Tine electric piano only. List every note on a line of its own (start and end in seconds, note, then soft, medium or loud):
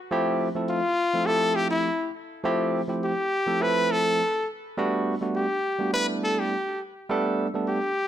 0.11 0.47 F3 loud
0.11 0.48 A3 loud
0.11 0.48 C4 loud
0.11 0.48 E4 loud
0.11 0.48 G4 loud
0.55 0.79 F3 medium
0.55 0.79 A3 medium
0.55 0.80 C4 medium
0.55 0.80 E4 medium
0.55 0.80 A4 medium
0.85 0.92 E4 soft
0.85 0.92 G4 soft
1.14 1.25 F3 medium
1.14 1.25 A3 medium
1.14 1.26 C4 medium
1.14 1.26 E4 medium
1.14 1.26 A4 medium
1.28 1.88 F3 medium
1.28 1.88 A3 medium
1.28 1.88 C4 medium
1.28 1.88 E4 medium
1.28 1.88 G4 medium
2.01 2.08 E4 soft
2.01 2.09 G4 soft
2.43 2.80 F3 loud
2.43 2.80 A3 loud
2.43 2.81 C4 loud
2.43 2.81 E4 loud
2.43 2.81 G4 loud
2.88 3.12 F3 medium
2.88 3.12 A3 medium
2.88 3.13 C4 medium
2.88 3.13 E4 medium
2.88 3.13 G4 medium
3.19 3.25 A4 soft
3.46 3.58 F3 medium
3.46 3.58 A3 medium
3.46 3.58 C4 medium
3.46 3.58 E4 medium
3.46 3.59 A4 medium
3.60 4.21 F3 medium
3.60 4.21 A3 medium
3.60 4.21 C4 medium
3.60 4.21 E4 medium
3.60 4.21 A4 medium
4.34 4.41 E4 soft
4.34 4.42 G4 soft
4.78 5.14 G3 loud
4.78 5.14 A3 medium
4.78 5.14 B3 loud
4.78 5.14 D4 loud
4.78 5.14 F#4 loud
5.21 5.45 G3 medium
5.21 5.45 A3 medium
5.21 5.45 B3 medium
5.21 5.46 D4 medium
5.21 5.46 F#4 medium
5.50 5.57 D4 soft
5.79 5.91 G3 medium
5.79 5.91 A3 medium
5.79 5.91 B3 medium
5.79 5.91 D4 medium
5.79 5.92 F#4 medium
5.93 6.53 G3 medium
5.93 6.54 A3 medium
5.93 6.54 B3 medium
5.93 6.54 D4 medium
5.93 6.54 E4 medium
6.67 6.74 D4 soft
6.67 6.74 F#4 soft
7.09 7.46 G3 loud
7.09 7.46 A3 loud
7.09 7.46 B3 loud
7.09 7.47 D4 loud
7.09 7.47 A4 loud
7.54 7.78 G3 medium
7.54 7.78 A3 medium
7.54 7.78 B3 medium
7.54 7.79 D4 medium
7.54 7.79 A4 medium
7.82 7.90 D4 soft
7.82 7.90 A4 soft